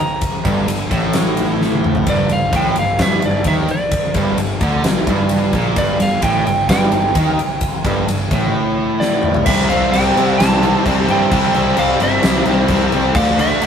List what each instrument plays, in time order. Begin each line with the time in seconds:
Already playing: lead electric guitar A#5
0.21 kick, ride
0.45 picked electric bass G1, overdriven electric guitar G2, kick, ride
0.68 picked electric bass G1, overdriven electric guitar G2, ride
0.91 picked electric bass A1, overdriven electric guitar A2, kick, ride
1.13 snare, ride
1.37 ride
1.61 snare
1.72 high tom
1.84 mid tom
1.95 floor tom
2.06 picked electric bass G1, overdriven electric guitar G2, lead electric guitar D5, kick, ride
2.29 picked electric bass G1, overdriven electric guitar G2, lead electric guitar F5, snare, ride
2.53 picked electric bass A1, overdriven electric guitar A2, lead electric guitar G5, kick, ride
2.76 picked electric bass G1, overdriven electric guitar G2, lead electric guitar F5, ride
2.99 picked electric bass G1, overdriven electric guitar G2, lead electric guitar E5, kick, snare, ride
3.21 picked electric bass G1, overdriven electric guitar G2, ride
3.25 lead electric guitar D5
3.44 picked electric bass D#2, overdriven electric guitar D#3, lead electric guitar E5, kick, ride
3.69 lead electric guitar D5, ride
3.91 kick, ride
4.14 picked electric bass G1, overdriven electric guitar G2, kick, ride
4.19 lead electric guitar C5
4.37 picked electric bass G1, overdriven electric guitar G2, ride
4.61 picked electric bass D2, overdriven electric guitar D3, kick, ride
4.84 picked electric bass G1, overdriven electric guitar G2, snare, ride
5.07 picked electric bass G1, overdriven electric guitar G2, kick, ride
5.29 ride
5.53 picked electric bass A#1, overdriven electric guitar A#2, kick, ride
5.76 picked electric bass G1, overdriven electric guitar G2, lead electric guitar D5, kick, ride
5.99 picked electric bass G1, overdriven electric guitar G2, lead electric guitar F5, snare, ride
6.22 picked electric bass A1, overdriven electric guitar A2, lead electric guitar G5, kick, ride
6.46 picked electric bass G1, overdriven electric guitar G2, lead electric guitar G5, ride
6.69 picked electric bass G1, overdriven electric guitar G2, lead electric guitar G5, kick, snare, ride
6.91 picked electric bass G1, overdriven electric guitar G2, ride
7.15 picked electric bass D#2, overdriven electric guitar D#3, kick, ride
7.39 ride
7.61 kick, ride
7.84 picked electric bass G1, overdriven electric guitar G2, kick, ride
8.07 picked electric bass G1, overdriven electric guitar G2, ride
8.31 picked electric bass A1, overdriven electric guitar A2, kick, ride
9.00 lead electric guitar D5, snare
9.23 mid tom
9.34 floor tom
9.46 picked electric bass C2, overdriven electric guitar C3 G3, lead electric guitar E5, kick, crash
9.50 overdriven electric guitar C4
9.69 overdriven electric guitar C3 G3 C4, lead electric guitar F5, crash
9.92 picked electric bass C2, overdriven electric guitar C3 G3 C4, lead electric guitar G5, crash
10.17 picked electric bass C3, overdriven electric guitar C3 G3 C4, crash
10.38 picked electric bass C2, overdriven electric guitar C3 G3 C4, lead electric guitar A5, snare, crash
10.62 overdriven electric guitar C3 G3 C4, crash
10.86 picked electric bass C2, overdriven electric guitar C3 G3 C4, kick, crash
11.08 picked electric bass G2, overdriven electric guitar C3 G3 C4, lead electric guitar G5, crash
11.31 picked electric bass C2, overdriven electric guitar C3 G3 C4, kick, crash
11.54 picked electric bass C2, overdriven electric guitar C3 G3 C4, crash
11.77 picked electric bass C2, overdriven electric guitar C3 G3 C4, lead electric guitar F5, crash
12.00 picked electric bass G1, overdriven electric guitar C3 G3 C4, lead electric guitar E5, crash
12.23 picked electric bass C2, overdriven electric guitar C3, snare, crash
12.27 overdriven electric guitar G3 C4
12.45 picked electric bass C2, overdriven electric guitar C3, crash
12.50 overdriven electric guitar G3 C4
12.68 picked electric bass C2, overdriven electric guitar C3 G3, kick, crash
12.73 overdriven electric guitar C4
12.92 picked electric bass C2, overdriven electric guitar C3 G3 C4, crash
13.15 picked electric bass D2, overdriven electric guitar D3 A3 D4, lead electric guitar F5, kick, crash
13.39 overdriven electric guitar D3 A3 D4, lead electric guitar E5, crash
13.61 picked electric bass D2, overdriven electric guitar D3 A3 D4, crash